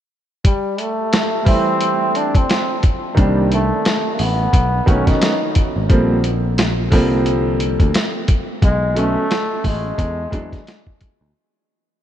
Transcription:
0.45 G3, kick, closed hi-hat
0.78 A3, closed hi-hat
1.13 snare, closed hi-hat
1.44 E3 G3 A3 C4, kick, open hi-hat
1.48 C4 E4
1.81 closed hi-hat
2.15 D4, closed hi-hat
2.35 C4, kick, closed hi-hat
2.50 snare, closed hi-hat
2.83 kick, closed hi-hat
3.15 C2 D#3 G3 A#3 C4 D4, kick, closed hi-hat
3.52 A3, closed hi-hat
3.85 snare, closed hi-hat
4.14 A#3
4.19 A1 B3, open hi-hat
4.53 B1, kick, closed hi-hat
4.86 B1 D#3 F#3 A3 B3 C#4, kick, closed hi-hat
5.07 D#4, kick, snare, closed hi-hat
5.21 snare, closed hi-hat
5.55 kick, closed hi-hat
5.76 G#1
5.89 A#1 D3 F3 G3 A#3 C4, kick, closed hi-hat
6.24 closed hi-hat
6.58 snare, closed hi-hat
6.90 C2 D3 F3 G3 A#3 C4, kick, open hi-hat
7.26 closed hi-hat
7.60 closed hi-hat
7.80 D2, kick, closed hi-hat
7.94 snare, closed hi-hat
8.28 kick, closed hi-hat
8.62 B1 G#3, kick, closed hi-hat
8.94 D3 F#3 A3 B3 C#4, closed hi-hat
8.99 A3
9.31 snare, closed hi-hat
9.64 A1 G#3, kick, open hi-hat
9.98 E2, kick, closed hi-hat
10.31 E2 E3 F#3 G#3 B3 D4, kick, closed hi-hat
10.52 kick, snare, closed hi-hat
10.67 snare, closed hi-hat
10.87 kick
11.01 kick, closed hi-hat
11.21 D2

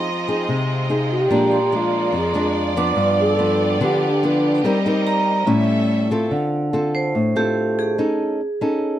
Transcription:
Already playing: F3 G#3 C4 F4 D#5 C6
0.28 C4 D#4 G#4
0.49 C3
0.89 C4 D#4 G#4
1.11 G4
1.31 A#2 F3 G#3 A#3 D4 D5 A#5
1.51 C6
1.72 F3 G#3 D4
1.76 F4
2.12 F2
2.18 G#4
2.34 F3 G#3 D4
2.77 F3 B3 D4 D6
2.94 G2 B3 G4
3.20 A4
3.39 F3 B3 D4
3.81 D3 F3 B3 D4 G4
4.23 F3 B3 D4 B4
4.62 G3 C4 D#4 A#4 D#5
4.86 C4 D#4 A#4
5.07 A#5
5.46 A2 G3 C#4 E4 A4 E5
6.11 C4 F4 A4
6.31 D3
6.73 C4 F4 A4
6.95 C5
7.15 A2
7.36 C4 F4 G4 A4
7.79 G#4
7.98 C#4 D#4 A4
8.61 C#4 D#4 A4

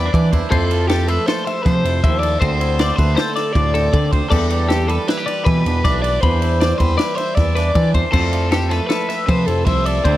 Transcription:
Already playing: E3 G3 E4 B4 D5
0.05 D4
0.13 E3 D4 D5, kick, ride
0.32 E2 E4 C5, kick, ride
0.50 F2 F3 E4 A4 C5, kick, crash
0.71 F4, ride
0.88 G4 A4, snare, ride
1.07 A3 A4 B4, ride
1.26 F4 A4 C5, snare, ride
1.45 C5 E5, ride
1.63 C3 F3 C5, kick, snare, ride
1.84 F2 E4, ride
2.04 D#2 F3 E4 E5, kick, ride
2.19 A4 D5, ride
2.40 D2 D3 C4 C5, kick, ride
2.60 E4, ride
2.79 D5, snare, ride
2.96 D2 A3 B4 C5, kick, ride
3.15 E4 A4 C5, snare, ride
3.36 D5, snare, ride
3.53 D2 A2 D5, kick, ride
3.74 C4 A4, ride
3.92 D3 C4 D5, kick, ride
4.11 D2 C5, kick, ride
4.30 E2 E3 G3 D4 G4 A4 D5, kick, crash
4.50 G4, ride
4.68 G4 A4, snare, ride
4.87 G3 A4 B4, ride
5.08 E4 G4 B4, snare, ride
5.17 G4
5.26 D5, ride
5.45 B2 E3 B4, kick, ride
5.66 E2 D4, ride
5.84 B1 E3 D4 D5, kick, snare, ride
6.02 B4 D5, ride
6.21 E2 E3 D4 C5 B5, kick, ride
6.42 E4, ride
6.61 D5, snare, ride
6.78 E2 G3 B4 C5, kick, ride
6.97 E4 B4 D5, snare, ride
7.15 C5 E5, ride
7.35 E2 E3 D5, kick, snare, ride
7.55 D4 B4, snare, ride
7.75 E3 D4 D5, kick, ride
7.94 E2 C5, kick, ride
8.12 F2 F3 A3 E4 F4 A4 C5, kick, crash
8.33 F4, ride
8.51 G4 A4, snare, ride
8.69 A3 A4 B4, snare, ride
8.87 F4 A4 B4, snare, ride
9.09 E5, snare, ride
9.26 C3 F3 B4 C5, kick, ride
9.46 F2 E4 A4, ride
9.65 C2 F3 E4 C5 E5, kick, ride
9.85 A4 D5, ride
10.04 D2 D3 A3 C4 E4 C5, kick, ride

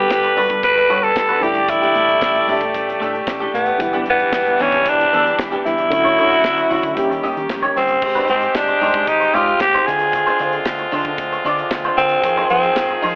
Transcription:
Already playing: D3 G3 B3 G4 A4 B4
0.10 G1, kick, snare
0.24 muted clean electric guitar stroke, closed hi-hat
0.37 G2 D4 F#4 B4, open hi-hat
0.49 G2, muted clean electric guitar stroke, kick, closed hi-hat
0.63 G1 B4, kick, closed hi-hat
0.76 muted clean electric guitar stroke, closed hi-hat
0.89 G2 D4 F#4 C#5, closed hi-hat
1.03 A4, muted clean electric guitar stroke, closed hi-hat
1.16 G1, muted clean electric guitar stroke, kick, snare
1.29 D4 F#4 B4, closed hi-hat
1.41 A1 D3 E3 G3 A3 E4 G4 D5, muted clean electric guitar stroke, closed hi-hat
1.55 muted clean electric guitar stroke, closed hi-hat
1.68 E4, muted clean electric guitar stroke, kick, closed hi-hat
1.82 A3 D4 G4, closed hi-hat
1.95 A2 A3 D4 G4, closed hi-hat
2.09 muted clean electric guitar stroke, closed hi-hat
2.21 A1, kick, snare
2.35 muted clean electric guitar stroke, closed hi-hat
2.48 A2 A3 D4 G4, open hi-hat
2.61 A2, muted clean electric guitar stroke, kick, closed hi-hat
2.74 A1, kick, closed hi-hat
2.88 muted clean electric guitar stroke, closed hi-hat
3.00 A2 A3 D4 A4, closed hi-hat
3.14 muted clean electric guitar stroke, closed hi-hat
3.27 A1, muted clean electric guitar stroke, kick, snare
3.40 A3 D4 G4, closed hi-hat
3.54 A2 B3, muted clean electric guitar stroke, snare, closed hi-hat
3.66 muted clean electric guitar stroke, closed hi-hat
3.78 E1 D3 E3 G3 B3 D4 E4, muted clean electric guitar stroke, kick, closed hi-hat
3.93 B3 D4 G4, closed hi-hat
4.06 E2 B3 D4 G4, closed hi-hat
4.10 B3
4.19 muted clean electric guitar stroke, closed hi-hat
4.33 E1, kick, snare
4.46 muted clean electric guitar stroke, closed hi-hat
4.59 E2 B3 C#4 D4 G4, open hi-hat
4.72 E2, muted clean electric guitar stroke, kick, closed hi-hat
4.86 E1 D4, kick, closed hi-hat
5.00 muted clean electric guitar stroke, closed hi-hat
5.13 E2 B3 D4 A4, closed hi-hat
5.26 muted clean electric guitar stroke, closed hi-hat
5.39 E1, muted clean electric guitar stroke, kick, snare
5.52 B3 D4 G4, closed hi-hat
5.64 E2 D3 E3 G3 B3 E4, muted clean electric guitar stroke, snare, closed hi-hat
5.78 muted clean electric guitar stroke, closed hi-hat
5.90 D2 D3 F#3 A3 C#4 E4 F#4, muted clean electric guitar stroke, kick, closed hi-hat
6.05 E4 F#4 C#5, closed hi-hat
6.18 D3 E4 F#4 C#5, closed hi-hat
6.31 muted clean electric guitar stroke, closed hi-hat
6.44 D2, kick, snare
6.57 muted clean electric guitar stroke, closed hi-hat
6.70 D3 E4 F#4 C#5, open hi-hat
6.83 D3, muted clean electric guitar stroke, kick, closed hi-hat
6.96 D#2 D#3 G3 A#3 C#4 G4, kick, closed hi-hat
7.10 D#3, muted clean electric guitar stroke, closed hi-hat
7.23 D#2 D#4 G4 D#5, closed hi-hat
7.37 D#3, muted clean electric guitar stroke, closed hi-hat
7.49 F1, muted clean electric guitar stroke, kick, snare
7.63 D#4 G4 C#5, closed hi-hat
7.76 G1 C4, muted clean electric guitar stroke, snare, open hi-hat
7.88 muted clean electric guitar stroke, closed hi-hat
8.01 G#1 G#3 C4 G4, muted clean electric guitar stroke, kick, crash
8.15 D#4 G4 C5, closed hi-hat
8.28 G#2 C4 D#4 G4 C5, closed hi-hat
8.41 muted clean electric guitar stroke, closed hi-hat
8.55 G#1 D4, kick, snare
8.67 muted clean electric guitar stroke, closed hi-hat
8.81 G#2 D#4 G4 C5, open hi-hat
8.94 G#2, muted clean electric guitar stroke, kick, closed hi-hat
9.07 G#1 D#4, kick, closed hi-hat
9.20 muted clean electric guitar stroke, closed hi-hat
9.33 G#2 D#4 F4 G4 D5, closed hi-hat
9.48 muted clean electric guitar stroke, closed hi-hat
9.60 G#1 G4, muted clean electric guitar stroke, kick, snare
9.73 D#4 G4 C5, closed hi-hat
9.86 D3 G#3 F4 G#4, muted clean electric guitar stroke, snare, closed hi-hat
9.99 muted clean electric guitar stroke, closed hi-hat
10.13 muted clean electric guitar stroke, kick, closed hi-hat
10.27 D4 F4 C5, closed hi-hat
10.39 D3 D4 F4 C5, closed hi-hat
10.53 muted clean electric guitar stroke, closed hi-hat
10.66 D2, kick, snare
10.78 muted clean electric guitar stroke, closed hi-hat
10.92 D3 D4 F4 C5, open hi-hat
11.05 D3, muted clean electric guitar stroke, kick, closed hi-hat
11.18 D2, kick, closed hi-hat
11.33 muted clean electric guitar stroke, closed hi-hat
11.45 D3 D4 F4 D5, closed hi-hat
11.58 muted clean electric guitar stroke, closed hi-hat
11.71 D2, muted clean electric guitar stroke, kick, snare
11.84 D4 F4 C5, closed hi-hat
11.97 D3 C4, muted clean electric guitar stroke, snare, closed hi-hat
12.09 muted clean electric guitar stroke, closed hi-hat
12.23 F2 D#3 F3 G#4, muted clean electric guitar stroke, kick, closed hi-hat
12.38 D#4 G#4 C5, closed hi-hat
12.50 F3 C4 D#4 G#4 C5, closed hi-hat
12.63 muted clean electric guitar stroke, closed hi-hat
12.76 F2, kick, snare
12.89 muted clean electric guitar stroke, closed hi-hat
13.02 F3 D#4 G#4 C5, open hi-hat

